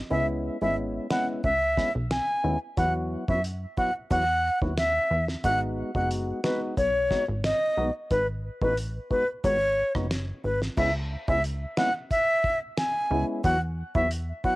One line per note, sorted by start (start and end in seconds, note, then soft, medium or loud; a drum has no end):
0.10 0.50 C#2 loud
0.10 0.57 G#3 loud
0.10 0.57 B3 medium
0.10 0.58 C#4 medium
0.10 0.58 E4 loud
0.10 0.26 E5 medium
0.61 0.99 G#1 loud
0.61 1.07 G#3 medium
0.61 1.07 B3 medium
0.61 1.07 C#4 medium
0.61 1.07 E4 medium
0.61 0.76 E5 medium
1.10 1.41 G#3 medium
1.10 1.42 B3 medium
1.10 1.42 C#4 medium
1.10 1.42 E4 medium
1.10 1.26 F#5 medium
1.10 finger snap medium
1.10 snare loud
1.44 1.83 C#2 loud
1.44 1.92 E5 loud
1.44 kick medium
1.77 1.90 G#3 medium
1.77 1.91 B3 medium
1.77 1.91 C#4 medium
1.77 1.91 E4 medium
1.77 kick medium
1.77 snare medium
1.95 2.21 B1 medium
2.11 2.59 G#5 medium
2.11 finger snap medium
2.11 snare loud
2.44 2.58 D#2 medium
2.44 2.57 G#3 medium
2.44 2.57 B3 medium
2.44 2.57 C#4 medium
2.44 2.57 E4 medium
2.77 3.17 E2 loud
2.77 3.24 F#3 medium
2.77 3.24 B3 medium
2.77 3.24 E4 medium
2.77 3.24 F#4 loud
2.77 2.93 F#5 medium
2.77 kick loud
2.77 closed hi-hat medium
3.28 3.66 F#2 medium
3.28 3.40 F#3 medium
3.28 3.40 B3 medium
3.28 3.40 E4 medium
3.28 3.40 F#4 medium
3.28 3.42 E5 medium
3.28 kick loud
3.44 closed hi-hat medium
3.77 3.90 F#3 medium
3.77 3.91 B3 medium
3.77 3.91 E4 medium
3.77 3.91 F#4 medium
3.77 3.93 F#5 medium
3.77 kick medium
4.10 4.50 E2 loud
4.10 4.24 F#3 medium
4.10 4.24 B3 medium
4.10 4.24 E4 medium
4.10 4.24 F#4 loud
4.10 4.59 F#5 loud
4.10 kick medium
4.10 closed hi-hat medium
4.62 4.99 D#2 medium
4.62 4.73 F#3 medium
4.62 4.73 B3 medium
4.62 4.74 E4 medium
4.62 4.74 F#4 medium
4.62 kick medium
4.78 5.25 E5 loud
4.78 finger snap medium
4.78 snare loud
4.78 closed hi-hat medium
5.11 5.36 E2 loud
5.28 snare medium
5.44 5.83 G#1 loud
5.44 5.91 G#3 loud
5.44 5.91 B3 medium
5.44 5.91 D#4 medium
5.44 5.91 F#4 loud
5.44 5.60 F#5 loud
5.44 kick loud
5.44 closed hi-hat medium
5.95 6.33 F#1 medium
5.95 6.40 G#3 medium
5.95 6.40 B3 medium
5.95 6.40 D#4 medium
5.95 6.41 F#4 medium
5.95 6.09 F#5 medium
5.95 kick medium
6.11 closed hi-hat medium
6.44 6.75 G#3 medium
6.44 6.75 B3 medium
6.44 6.75 D#4 medium
6.44 6.75 F#4 medium
6.44 6.60 B4 medium
6.44 finger snap medium
6.44 snare loud
6.77 7.17 B1 loud
6.77 7.25 C#5 medium
6.77 kick medium
6.77 closed hi-hat medium
7.10 7.24 G#3 medium
7.10 7.24 B3 medium
7.10 7.24 D#4 medium
7.10 7.24 F#4 medium
7.10 kick medium
7.10 snare medium
7.28 7.54 G#1 medium
7.44 7.92 D#5 medium
7.44 finger snap medium
7.44 snare loud
7.44 closed hi-hat medium
7.77 7.91 B1 loud
7.77 7.90 G#3 medium
7.77 7.91 B3 medium
7.77 7.91 D#4 medium
7.77 7.91 F#4 medium
8.11 8.50 G#1 loud
8.11 8.27 B4 loud
8.11 kick loud
8.11 closed hi-hat medium
8.62 8.99 A1 loud
8.62 8.73 G#3 medium
8.62 8.73 B3 medium
8.62 8.74 D#4 medium
8.62 8.74 F#4 medium
8.62 8.76 B4 medium
8.62 kick loud
8.77 closed hi-hat medium
9.10 9.24 G#3 medium
9.10 9.24 B3 medium
9.10 9.24 D#4 medium
9.10 9.24 F#4 medium
9.10 9.27 B4 medium
9.10 kick medium
9.44 9.83 G#1 loud
9.44 9.57 G#3 medium
9.44 9.57 B3 medium
9.44 9.57 D#4 medium
9.44 9.57 F#4 loud
9.44 9.92 C#5 loud
9.44 kick medium
9.44 closed hi-hat medium
9.95 10.33 F#1 medium
9.95 10.07 G#3 medium
9.95 10.07 B3 medium
9.95 10.07 D#4 medium
9.95 10.07 F#4 medium
9.95 kick medium
9.95 cross-stick medium
10.11 finger snap medium
10.11 snare loud
10.11 closed hi-hat medium
10.44 10.70 G#1 medium
10.44 10.60 B4 medium
10.62 snare medium
10.77 11.17 C#2 loud
10.77 10.90 G#3 medium
10.77 10.91 B3 medium
10.77 10.91 C#4 medium
10.77 10.91 E4 loud
10.77 10.93 E5 medium
10.77 kick loud
10.77 crash loud
11.28 11.66 C#2 loud
11.28 11.40 G#3 medium
11.28 11.40 B3 medium
11.28 11.40 C#4 medium
11.28 11.40 E4 medium
11.28 11.42 E5 medium
11.28 kick loud
11.44 closed hi-hat medium
11.77 11.90 G#3 medium
11.77 11.91 B3 medium
11.77 11.91 C#4 medium
11.77 11.91 E4 medium
11.77 11.93 F#5 medium
11.77 finger snap medium
11.77 snare loud
12.11 12.59 E5 loud
12.11 kick medium
12.11 closed hi-hat medium
12.44 kick medium
12.78 13.25 G#5 medium
12.78 finger snap medium
12.78 snare loud
12.78 closed hi-hat medium
13.11 13.24 C#2 loud
13.11 13.42 G#3 medium
13.11 13.42 B3 medium
13.11 13.42 C#4 medium
13.11 13.42 E4 medium
13.44 13.83 E2 loud
13.44 13.57 F#3 medium
13.44 13.57 B3 medium
13.44 13.57 E4 medium
13.44 13.57 F#4 loud
13.44 13.60 F#5 loud
13.44 kick loud
13.44 closed hi-hat medium
13.95 14.33 E2 loud
13.95 14.07 F#3 medium
13.95 14.07 B3 medium
13.95 14.07 E4 medium
13.95 14.07 F#4 medium
13.95 14.09 E5 medium
13.95 kick loud
14.11 closed hi-hat medium
14.44 14.56 F#3 medium
14.44 14.56 B3 medium
14.44 14.56 E4 medium
14.44 14.56 F#4 medium
14.44 14.56 F#5 medium
14.44 kick medium